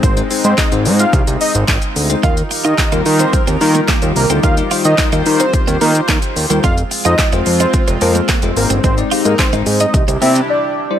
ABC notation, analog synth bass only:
X:1
M:4/4
L:1/16
Q:1/4=109
K:Eb
V:1 name="Analog synth bass" clef=bass
A,,,2 z A,, z A,,, A,,2 C,, C,, z A,,, A,,, z D,,2 | E,,2 z E, z E,, E,2 z E,, E,2 z E,, C,, D,, | E,,2 z E, z E,, E,2 z E,, E,2 E, z E,, E,, | F,,,2 z F,, z F,,, F,,2 z F,,, F,,2 z F,,, A,,, G,,, |
A,,,2 z A,, z A,,, A,,2 C,, C,, C,2 z4 |]